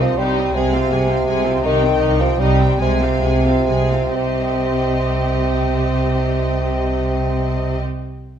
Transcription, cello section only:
Already playing: C3
0.18 C3
0.55 C3
0.91 C3
1.27 C3
1.64 C3
2.01 C3
2.40 C3
2.80 C3
3.22 C3
3.68 C3
4.16 C3

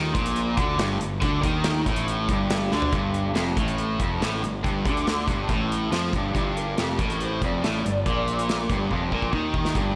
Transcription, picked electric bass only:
Already playing: D#2
0.15 A#1
0.58 D2
0.77 G1
1.00 G1
1.22 D2
1.44 D#2
1.86 A1
2.29 G1
2.73 D2
2.93 G1
3.36 F1
3.56 A1
4.00 F1
4.21 A1
4.43 G1
4.64 G1
4.85 D2
5.28 G1
5.49 A1
5.91 F2
6.13 G1
6.34 G1
6.78 F1
6.99 A1
7.42 F1
7.63 A1
7.84 G1
8.06 A#1
8.70 G1
8.90 F1
9.12 A#1
9.33 D#2
9.76 G1

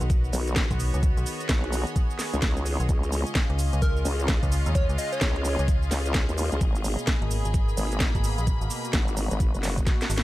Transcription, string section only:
Already playing: B3 D#4 F#4 A#4 C#5 F#5
0.00 D#5
2.89 C#4
3.06 G#4
3.35 F5
6.99 B5

